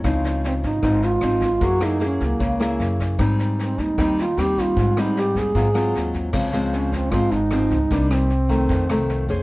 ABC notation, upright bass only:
X:1
M:4/4
L:1/8
Q:1/4=153
K:Dblyd
V:1 name="Upright bass" clef=bass
D,,3 A,,, A,,,2 A,,,2 | _G,,3 D,, D,,2 G,,2 | A,,3 E,, E,,2 E,,2 | A,,3 E,, A,,2 E,,2 |
D,,4 A,,, A,,,2 D,, | C,,4 F,, C,,2 F,, |]